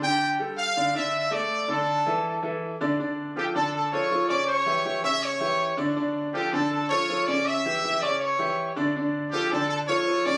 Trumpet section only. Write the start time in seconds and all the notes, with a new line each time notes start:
0.02 G4 G5
0.58 F5
0.95 E5 E6
1.32 D5 D6
1.70 A4 A5
3.37 G4 G5
3.55 A4 A5
3.75 A4 A5
3.92 C#5 C#6
4.29 D5 D6
4.47 C#5 C#6
5.04 E5 E6
5.23 C#5 C#6
6.34 G4 G5
6.53 A4 A5
6.71 A4 A5
6.89 C#5 C#6
7.26 D5 D6
7.45 E5 E6
8.01 D5 D6
8.19 C#5 C#6
9.31 G4 G5
9.51 A4 A5
9.69 A4 A5
9.87 C#5 C#6
10.25 D5 D6